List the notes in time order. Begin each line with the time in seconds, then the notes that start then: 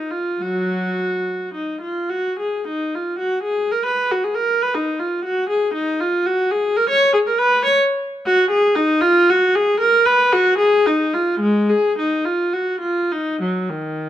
Already playing: D#4
0.11 F4
0.41 F#3 F#4
1.54 D#4
1.81 F4
2.10 F#4
2.40 G#4
2.68 D#4
2.95 F4
3.19 F#4
3.44 G#4
3.71 A#4
3.86 B4
4.12 F#4
4.24 G#4
4.35 A#4
4.62 B4
4.74 D#4
4.99 F4
5.25 F#4
5.49 G#4
5.74 D#4
6.00 F4
6.26 F#4
6.51 G#4
6.77 A#4
6.90 C#5
7.14 G#4
7.27 A#4
7.39 B4
7.65 C#5
8.26 F#4
8.51 G#4
8.76 D#4
9.02 F4
9.30 F#4
9.55 G#4
9.80 A#4
10.06 B4
10.32 F#4
10.59 G#4
10.86 D#4
11.14 F4
11.40 G#3
11.70 G#4
11.98 D#4
12.25 F4
12.53 F#4
12.81 F4
13.12 D#4
13.41 F#3
13.70 D#3